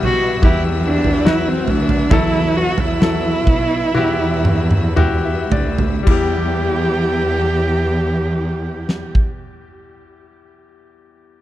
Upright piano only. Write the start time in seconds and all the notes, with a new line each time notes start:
Already playing: B2 G3 E4 F#4 G4
0.42 E4 F#4 G4
1.24 F#3 E4 F#4
2.10 B2 F#3 E4 A4
3.01 F#3 E4 A4
3.95 E4 F#4 G4
4.96 E4 F#4 G4 G5
5.25 E5
5.52 D5
6.03 E2 G3 E4
6.11 G4